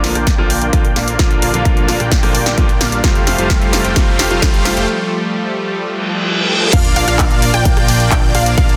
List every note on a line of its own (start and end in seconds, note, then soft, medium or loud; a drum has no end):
0.00 0.13 A#1 loud
0.00 3.00 D3 medium
0.00 0.13 D3 medium
0.00 1.17 F3 medium
0.00 0.13 F3 medium
0.00 0.13 A#3 loud
0.00 3.00 A#3 medium
0.00 0.14 A#3 medium
0.00 0.13 D4 medium
0.00 0.13 F4 medium
0.00 0.13 D5 medium
0.00 0.13 F5 loud
0.00 snare soft
0.00 open hi-hat loud
0.00 riser medium
0.04 0.14 F4 loud
0.15 0.71 A#1 loud
0.15 0.70 A#3 medium
0.15 0.70 D4 medium
0.15 0.70 F4 medium
0.15 0.70 D5 medium
0.15 0.70 G5 loud
0.15 cross-stick medium
0.15 closed hi-hat medium
0.27 kick loud
0.27 snare medium
0.27 closed hi-hat medium
0.38 0.48 D3 medium
0.38 0.48 F3 medium
0.38 0.48 A#3 medium
0.38 0.48 F4 loud
0.38 cross-stick medium
0.50 open hi-hat loud
0.62 closed hi-hat medium
0.73 0.94 A#1 loud
0.73 0.83 D3 medium
0.73 0.83 F3 medium
0.73 0.83 A#3 medium
0.73 0.83 F4 medium
0.73 0.92 G5 medium
0.73 kick loud
0.73 closed hi-hat medium
0.85 closed hi-hat soft
0.96 1.17 A#1 medium
0.96 1.16 A#3 medium
0.96 1.16 D4 medium
0.96 1.16 F4 medium
0.96 1.16 D5 medium
0.96 1.16 F5 medium
0.96 cross-stick medium
0.96 snare medium
0.96 open hi-hat loud
1.08 closed hi-hat medium
1.19 1.40 A#1 medium
1.19 1.51 D3 medium
1.19 1.51 F3 medium
1.19 3.02 G3 medium
1.19 1.51 A#3 medium
1.19 1.40 F4 medium
1.19 1.51 F4 medium
1.19 kick loud
1.19 snare medium
1.19 closed hi-hat medium
1.31 closed hi-hat soft
1.42 1.52 A#1 medium
1.42 1.51 A#3 loud
1.42 1.51 D4 medium
1.42 1.51 F4 medium
1.42 1.51 D5 medium
1.42 1.51 F5 loud
1.42 open hi-hat loud
1.53 1.98 A#1 loud
1.53 1.85 D3 medium
1.53 1.86 F3 medium
1.53 1.97 A#3 loud
1.53 1.86 A#3 medium
1.53 1.97 D4 medium
1.53 1.97 F4 medium
1.53 1.86 F4 medium
1.53 1.97 D5 medium
1.53 1.97 F5 loud
1.53 closed hi-hat medium
1.65 kick loud
1.65 closed hi-hat medium
1.77 closed hi-hat soft
1.88 1.98 D3 medium
1.88 1.98 F3 medium
1.88 1.98 A#3 medium
1.88 1.98 F4 loud
1.88 snare medium
1.88 open hi-hat loud
2.00 2.55 A#1 loud
2.00 2.55 A#3 loud
2.00 2.55 D4 medium
2.00 2.55 F4 medium
2.00 2.55 D5 medium
2.00 2.55 G5 loud
2.00 cross-stick medium
2.00 closed hi-hat medium
2.12 kick loud
2.12 snare medium
2.12 closed hi-hat medium
2.22 2.32 D3 medium
2.22 2.33 F3 medium
2.22 2.33 A#3 medium
2.22 2.33 F4 loud
2.22 cross-stick medium
2.22 open hi-hat medium
2.35 open hi-hat loud
2.46 snare medium
2.46 closed hi-hat medium
2.57 2.78 A#1 medium
2.57 2.67 D3 medium
2.57 2.67 F3 medium
2.57 2.77 A#3 medium
2.57 2.67 A#3 medium
2.57 2.77 D4 medium
2.57 2.77 F4 medium
2.57 2.68 F4 medium
2.57 2.77 D5 medium
2.57 2.77 G5 medium
2.57 kick loud
2.57 closed hi-hat medium
2.69 closed hi-hat soft
2.81 3.02 A#1 loud
2.81 3.01 A#3 medium
2.81 3.01 D4 medium
2.81 3.01 F4 medium
2.81 3.01 D5 medium
2.81 3.01 F5 medium
2.81 cross-stick medium
2.81 snare medium
2.81 open hi-hat loud
2.92 closed hi-hat medium
3.03 3.25 F1 loud
3.03 3.35 C3 medium
3.03 6.69 F3 medium
3.03 3.36 G3 medium
3.03 6.69 G3 medium
3.03 6.69 A3 medium
3.03 3.36 A3 medium
3.03 3.36 F4 medium
3.03 kick loud
3.03 snare medium
3.03 closed hi-hat medium
3.15 closed hi-hat soft
3.27 3.36 F1 medium
3.27 3.36 A3 medium
3.27 3.36 F4 medium
3.27 3.36 G4 medium
3.27 3.36 C5 medium
3.27 3.36 F5 loud
3.27 snare medium
3.27 open hi-hat loud
3.38 3.82 F1 medium
3.38 3.70 C3 medium
3.38 3.70 G3 medium
3.38 3.82 A3 medium
3.38 3.70 A3 medium
3.38 3.82 F4 medium
3.38 3.71 F4 medium
3.38 3.82 G4 medium
3.38 3.82 C5 medium
3.38 3.82 F5 loud
3.38 closed hi-hat medium
3.50 kick loud
3.50 snare medium
3.50 closed hi-hat medium
3.62 closed hi-hat soft
3.72 3.82 C3 medium
3.72 3.83 G3 medium
3.72 3.83 A3 medium
3.72 3.83 F4 loud
3.72 snare medium
3.72 open hi-hat loud
3.85 3.94 F1 loud
3.85 3.94 A3 medium
3.85 3.94 F4 medium
3.85 3.94 G4 medium
3.85 3.94 C5 medium
3.85 3.94 G5 medium
3.85 closed hi-hat soft
3.96 4.17 F1 loud
3.96 4.28 C3 medium
3.96 4.28 G3 medium
3.96 4.28 A3 medium
3.96 4.28 F4 medium
3.96 kick loud
3.96 snare medium
3.96 closed hi-hat medium
4.19 4.28 F1 loud
4.19 4.28 A3 medium
4.19 4.28 F4 medium
4.19 4.28 G4 medium
4.19 4.28 C5 medium
4.19 4.28 F5 loud
4.19 snare medium
4.19 open hi-hat loud
4.30 4.75 F1 loud
4.30 4.62 C3 medium
4.30 4.62 G3 medium
4.30 4.74 A3 loud
4.30 4.63 A3 medium
4.30 4.74 F4 medium
4.30 4.63 F4 medium
4.30 4.74 G4 medium
4.30 4.74 C5 medium
4.30 4.74 F5 loud
4.30 closed hi-hat medium
4.42 kick loud
4.42 snare medium
4.42 closed hi-hat medium
4.54 closed hi-hat soft
4.65 4.75 C3 medium
4.65 4.75 G3 medium
4.65 4.75 A3 medium
4.65 4.75 F4 loud
4.65 snare medium
4.65 open hi-hat loud
4.77 4.86 F1 loud
4.77 4.87 A3 medium
4.77 4.87 F4 medium
4.77 4.87 G4 medium
4.77 4.87 C5 medium
4.77 4.87 G5 medium
4.77 closed hi-hat soft
5.81 reverse cymbal medium
6.73 6.94 A#1 medium
6.73 8.77 F3 medium
6.73 8.77 A#3 medium
6.73 6.93 A#3 medium
6.73 6.93 D4 medium
6.73 8.77 D4 medium
6.73 6.93 F4 medium
6.73 6.93 D5 medium
6.73 6.93 F5 medium
6.73 kick loud
6.73 closed hi-hat medium
6.73 crash loud
6.73 sub drop medium
6.85 closed hi-hat soft
6.96 7.05 A#1 loud
6.96 7.05 A#3 loud
6.96 7.05 D4 medium
6.96 7.05 F4 medium
6.96 7.05 D5 loud
6.96 7.05 F5 loud
6.96 open hi-hat loud
7.08 7.52 A#1 loud
7.08 7.51 A#3 loud
7.08 7.51 D4 medium
7.08 7.51 F4 medium
7.08 7.51 D5 medium
7.08 7.51 F5 loud
7.08 closed hi-hat medium
7.19 kick loud
7.19 clap loud
7.19 closed hi-hat medium
7.31 closed hi-hat soft
7.42 open hi-hat loud
7.54 8.09 A#1 loud
7.54 8.09 A#3 medium
7.54 8.09 D4 medium
7.54 8.09 F4 medium
7.54 8.09 D5 medium
7.54 8.09 G5 loud
7.54 cross-stick medium
7.54 closed hi-hat medium
7.65 kick loud
7.65 closed hi-hat medium
7.77 cross-stick medium
7.77 closed hi-hat soft
7.88 open hi-hat loud
8.00 closed hi-hat medium
8.11 8.32 A#1 loud
8.11 8.31 D4 medium
8.11 8.31 F4 medium
8.11 8.31 G5 medium
8.11 kick loud
8.11 clap loud
8.11 closed hi-hat medium
8.35 8.55 A#1 medium
8.35 8.55 A#3 medium
8.35 8.55 D4 medium
8.35 8.55 F4 medium
8.35 8.55 D5 medium
8.35 8.55 F5 medium
8.35 cross-stick medium
8.35 open hi-hat loud
8.46 closed hi-hat medium
8.58 8.77 A#1 loud
8.58 8.77 A#3 medium
8.58 8.77 D4 medium
8.58 8.77 F4 medium
8.58 8.77 D5 medium
8.58 8.77 F5 medium
8.58 kick loud
8.58 closed hi-hat medium
8.69 closed hi-hat soft